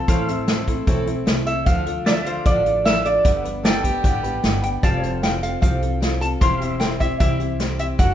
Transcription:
Already playing: A4
0.07 A1 A2 E3 A3 C4 E4 A4 C5 F5, kick, closed hi-hat
0.27 A3 C4 E4 A4 E5, closed hi-hat
0.47 A3 C4 E4 A4, snare, closed hi-hat
0.67 A3 C4 E4 A4, kick, closed hi-hat
0.87 B1 A2 E3 A3 C4 E4 A4, kick, closed hi-hat
1.06 A3 C4 E4 A4, closed hi-hat
1.26 C2 A3 C4 E4 A4, snare, closed hi-hat
1.46 A3 C4 E4 A4 E5, closed hi-hat
1.66 D2 D3 F3 D4 F4 A4 F5, kick, closed hi-hat
1.86 D4 F4 A4, closed hi-hat
2.05 F3 D4 F4 A4 D5 E5, snare, closed hi-hat
2.25 D4 F4 A4 C5 F5, closed hi-hat
2.45 A1 D3 F3 D4 F4 A4 D5, kick, closed hi-hat
2.64 D4 F4 A4, closed hi-hat
2.84 F3 D4 F4 A4 E5, snare, closed hi-hat
3.04 D4 F4 A4 D5, closed hi-hat
3.24 G1 G2 D3 G3 B3 D4 B4, kick, closed hi-hat
3.44 G3 B3 D4 B4, closed hi-hat
3.63 G3 B3 D4 A4 B4 D5 G5, snare, closed hi-hat
3.83 G3 B3 D4 G4 B4, kick, closed hi-hat
4.03 A1 G2 D3 G3 B3 D4 B4, kick, closed hi-hat
4.23 G3 B3 D4 B4, closed hi-hat
4.43 G1 G3 B3 D4 B4, snare, closed hi-hat
4.62 G3 B3 D4 B4 G5, closed hi-hat
4.83 F1 F3 G3 C4 F4 A4 D5 F5 A5, kick, closed hi-hat
5.02 C4 F4 A4, closed hi-hat
5.08 C5
5.22 G3 C4 F4 A4 G5, snare, closed hi-hat
5.42 C4 F4 A4 F5, closed hi-hat
5.61 C2 F3 G3 C4 F4 A4 F5, kick, closed hi-hat
5.81 C4 F4 A4, closed hi-hat
6.01 G3 C4 F4 A4, snare, closed hi-hat
6.20 C4 F4 A4 A5, closed hi-hat
6.41 E1 E3 G3 C4 E4 G4 C5 F5 C6, kick, closed hi-hat
6.60 C4 E4 G4 E5, closed hi-hat
6.80 G3 C4 E4 G4 G5, snare, closed hi-hat
7.00 C4 E4 G4 E5, kick, closed hi-hat
7.20 C2 E3 G3 C4 E4 G4 E5, kick, closed hi-hat
7.40 C4 E4 G4, closed hi-hat
7.60 G3 C4 E4 G4, snare, closed hi-hat
7.79 C4 E4 G4 E5, closed hi-hat
7.98 F#1 F#3 D4 F#4 A4 F#5, kick, closed hi-hat

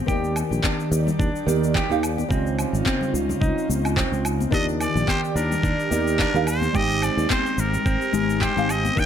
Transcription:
Already playing: G4
0.06 D#2 D#3 G4 D5, kick, shaker
0.11 D5
0.24 shaker
0.36 low woodblock, shaker
0.51 A#1, shaker
0.64 D4, kick, clap, high conga, shaker
0.80 shaker
0.92 D#2, shaker
1.07 low conga, shaker
1.19 D#2 D4, kick, shaker
1.36 shaker
1.46 D#2 D#3 G4 D5, high conga, shaker
1.64 shaker
1.75 G4, kick, clap, shaker
1.89 D#2 D#3 D#4 G4 F5, shaker
2.03 low woodblock, shaker
2.18 high conga, shaker
2.28 C#2 C#3 C4 D#4 F4, kick, shaker
2.33 D#5
2.47 shaker
2.59 low woodblock, shaker
2.73 G#1, shaker
2.86 C4, kick, clap, high conga, shaker
3.01 low conga, shaker
3.14 C#2, shaker
3.29 low conga, shaker
3.41 C#2 D#4, kick, shaker
3.58 shaker
3.69 C#2, high conga, shaker
3.85 low woodblock, shaker
3.97 C4, kick, clap, shaker
4.12 C#2, shaker
4.25 low woodblock, shaker
4.40 high conga, shaker
4.51 D#2 D#3 D4 G4 D5 D#5, kick, shaker
4.55 D5
4.69 shaker
4.80 D5, low woodblock, shaker
4.95 A#1, shaker
5.08 G4 C5, kick, clap, high conga, shaker
5.24 shaker
5.36 D#2 D4 A#4, shaker
5.52 low conga, shaker
5.63 D#2 D4, kick, shaker
5.80 shaker
5.90 D#2 D#3 G4 D5, high conga, shaker
6.08 shaker
6.19 D4 A#4, kick, clap, shaker
6.34 D#2 D#3 D#4 G4 F5, shaker
6.47 C5, low woodblock, shaker
6.62 high conga, shaker
6.73 G#1 G#3 C4 D#4 G4 D#5, kick, shaker
6.77 C5
6.91 shaker
7.02 C4 D5, low woodblock, shaker
7.17 D#2, shaker
7.30 C4 C5, kick, clap, high conga, shaker
7.46 shaker
7.58 G#1 A#4, shaker
7.74 low conga, shaker
7.86 G#1 C4, kick, shaker
8.02 shaker
8.13 G#1 G#3 D#4 G4 C5, high conga, shaker
8.30 shaker
8.41 G4 C5, kick, clap, shaker
8.56 G#1 G#3 D#4 G4 F5, shaker
8.69 C4 D#5, low woodblock, shaker
8.85 high conga, shaker
8.95 D#2 D#3 D4 G4 G5, kick, shaker
9.00 D5

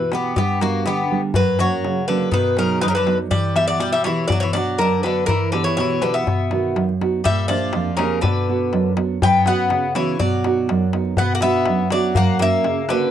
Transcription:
Already playing: B2 E3
0.12 B3 E4 G4, darbuka tek
0.36 G2 B3 G4, darbuka dum
0.61 G3 A#3 B3 D4 F#4, darbuka tek
0.86 D3 B3 G4, darbuka tek
1.11 G3 B3 D4
1.34 F#2 F#3 B4, darbuka dum
1.59 F#3 A#3 C#4 C#5, darbuka tek
1.84 C#3, darbuka tek
2.08 D3 F#3 A#3 C#4 B4
2.31 B2 D#3 B4, darbuka dum
2.57 C#3 F#3 B3 D#4 A#4, darbuka tek
2.69 darbuka tek
2.81 F#2 D#3 B4, darbuka tek
2.88 C#3 A#4
2.95 D3 B4, darbuka tek
3.07 F#3 B3 D#4, darbuka tek
3.19 darbuka tek
3.31 E3 G3 D5, darbuka dum
3.55 G3 B3 E4 G4 E5, darbuka tek
3.68 F#3 D5
3.80 B2 G3 D5, darbuka tek
3.92 G3 E5
4.04 E3 B3 E4 G4 C#5, darbuka tek
4.28 B2 D5, darbuka dum
4.32 F#3
4.40 E3 C#5
4.53 F#3 B3 D4 F#4 D5, darbuka tek
4.79 F#2 D3 A#4, darbuka tek
5.03 D3 B3 D4 F#4 B4, darbuka tek
5.26 E3 A#4, darbuka dum
5.52 D3 B3 E4 G4 B4, darbuka tek
5.64 E3 C#5
5.77 B2 E3 C#5, darbuka tek
6.02 D3 B3 E4 G4 B4, darbuka tek
6.14 B3 E5
6.26 B2, darbuka dum
6.39 darbuka tek
6.51 D#3 B3 F#4, darbuka tek
6.76 F#2, darbuka tek
6.89 darbuka tek
7.01 B3 D#4 F#4, darbuka tek
7.24 A#2 G3 E5, darbuka dum
7.48 F3 A#3 D4 G4 D5, darbuka tek
7.73 F2, darbuka tek
7.97 C#3 A#3 D4 G4 A#4, darbuka tek
8.21 B2 D3 B4, darbuka dum
8.49 B3 D4 F#4
8.73 F#2, darbuka tek
8.97 B3 D4 F#4, darbuka tek
9.22 F#2 B3 G5, darbuka dum
9.46 B3 C#4 F#4 F#5, darbuka tek
9.70 C#3, darbuka tek
9.95 E3 B3 C#4 F#4 C#5, darbuka tek
10.19 B2 F#3 D5, darbuka dum
10.33 darbuka tek
10.44 B3 D#4 F#4, darbuka tek
10.58 darbuka tek
10.69 F#2, darbuka tek
10.93 B3 D#4 F#4, darbuka tek
11.05 darbuka tek
11.17 B2 B3 F#5, darbuka dum
11.35 A#3 F#5
11.41 B3 D4 F#4 E5, darbuka tek
11.66 F#2, darbuka tek
11.90 F#3 B3 D4 F#4 D5, darbuka tek
12.15 F#2 A#3 F#5, darbuka dum
12.39 A#3 C#4 F#4 E5, darbuka tek
12.64 C#3, darbuka tek
12.89 D3 A#3 C#4 F#4 B4, darbuka tek

